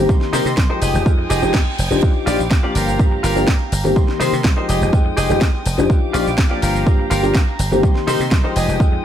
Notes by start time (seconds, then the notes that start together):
Already playing: D#3 A#3 C4 G4
0.09 C2 A#4 D#5 C6, kick, tambourine, shaker
0.21 snare, tambourine
0.33 C3 D#3 A#3 C4 D#4 G4 A#4 C5, open hi-hat, tambourine, shaker
0.46 C3, tambourine, shaker
0.57 C2, muted clean electric guitar stroke, kick, snare, shaker
0.69 F3 G#3 D#4 G4 A#4 C5
0.81 F1 G#3 G4 G#4 D#5 G5 D#6, open hi-hat, tambourine, shaker
0.94 F1, tambourine, shaker
1.06 F2 F3 G#3 D#4, kick, tambourine, reverse cymbal, shaker
1.18 muted clean electric guitar stroke
1.30 F1 G4 G#4 D#5, open hi-hat, tambourine, shaker
1.42 F1 F3 G#3 D#4 G4, tambourine, shaker
1.53 kick, snare, tambourine, shaker
1.67 tambourine
1.78 F1, open hi-hat, tambourine, shaker
1.90 F1 F3 D4 D#4 G4, muted clean electric guitar stroke, tambourine, shaker
2.02 G4 F5 D6, kick, tambourine, shaker
2.26 A#1 F3 D4 D#4 F4 G4 D5, open hi-hat, tambourine, shaker
2.39 A#1, tambourine, shaker
2.50 D#2, muted clean electric guitar stroke, kick, snare, tambourine, shaker
2.63 F3 A#3 D4 F4 G4 D5
2.75 G1 F4 G4 A#4 A#5, open hi-hat, tambourine, shaker
2.87 G1, tambourine, shaker
2.99 G2 F3 A#3 D4 G4, kick, tambourine, shaker
3.11 muted clean electric guitar stroke
3.23 G1 F4 G4 A#4, open hi-hat, tambourine, shaker
3.36 G1 F3 A#3 D4 G4, tambourine, shaker
3.47 G2, kick, snare, shaker
3.60 tambourine
3.72 G1, open hi-hat, tambourine, shaker
3.84 G1 D#3 A#3 C4 G4, muted clean electric guitar stroke, tambourine, shaker
3.96 C2 A#4 D#5 C6, kick, tambourine, shaker
4.08 snare
4.20 C3 D#3 A#3 C4 D#4 G4 A#4 C5, open hi-hat, tambourine, shaker
4.32 C3, tambourine, shaker
4.44 C2, kick, snare, tambourine, shaker
4.57 F3 G#3 D#4 G4 A#4 C5
4.68 F1 G#3 G4 G#4 D#5 G5 D#6, open hi-hat, tambourine, shaker
4.81 F1, tambourine, shaker
4.93 F3 G#3 D#4 G5, kick, tambourine, shaker
5.05 muted clean electric guitar stroke
5.17 F1 G4 G#4 D#5, open hi-hat, tambourine, shaker
5.29 F1 F3 G#3 D#4 G4, tambourine, shaker
5.41 F2, kick, snare, tambourine, shaker
5.54 tambourine
5.65 F1, open hi-hat, tambourine, shaker
5.77 F1 F3 D4 D#4 G4, muted clean electric guitar stroke, tambourine, shaker
5.90 D#2 G4 F5 D6, kick, tambourine, shaker
6.13 A#1 F3 D4 D#4 F4 G4 D5, open hi-hat, tambourine, shaker
6.26 A#1, tambourine, shaker
6.38 kick, snare, tambourine, shaker
6.50 F3 A#3 D4 F4 G4 D5
6.62 G1 F4 G4 A#4 A#5, open hi-hat, tambourine, shaker
6.75 G1, tambourine, shaker
6.86 G2 F3 A#3 D4 G4, kick, tambourine, shaker
6.98 muted clean electric guitar stroke
7.10 G1 F4 G4 A#4, open hi-hat, tambourine, shaker
7.23 G1 F3 A#3 D4 G4, tambourine, shaker
7.35 G2, kick, snare, shaker
7.47 tambourine
7.59 G1, open hi-hat, tambourine, shaker
7.71 G1 D#3 A#3 C4 G4, muted clean electric guitar stroke, tambourine, shaker
7.83 C2 A#4 D#5 C6, kick, tambourine, shaker
7.95 snare
8.07 C3 D#3 A#3 C4 D#4 G4 A#4 C5, open hi-hat, tambourine, shaker
8.20 C3, tambourine, shaker
8.31 C2, muted clean electric guitar stroke, kick, snare, tambourine, shaker
8.44 F3 G#3 D#4 G4 A#4 C5
8.56 F1 G#3 G4 G#4 D#5 G5 D#6, open hi-hat, tambourine, shaker
8.68 F1, tambourine, shaker
8.80 F3 G#3 D#4 G5, kick, tambourine, shaker
8.92 muted clean electric guitar stroke